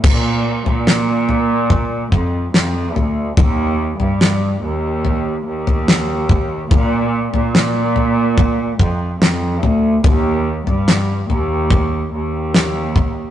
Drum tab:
CC |x---------------|----------------|----------------|----------------|
SD |----o-------o---|----o-------o---|----o-------o---|----o-------o---|
FT |o--o--o-o-----o-|o--o----o--o--o-|o--o--o-o-----o-|o--o--o-o-----o-|
BD |o-------o-o-----|o-------------o-|o-------o-o-----|o-------o-----o-|